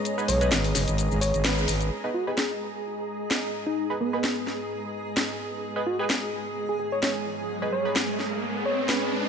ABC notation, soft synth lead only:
X:1
M:4/4
L:1/16
Q:"Swing 16ths" 1/4=129
K:G#m
V:1 name="Soft synth lead"
z2 c2 z6 c2 B4 | z2 F G6 z6 D- | D z B, B,4 z8 z | z2 F G6 G G c c z3 |
z2 c2 z6 c2 B4 |]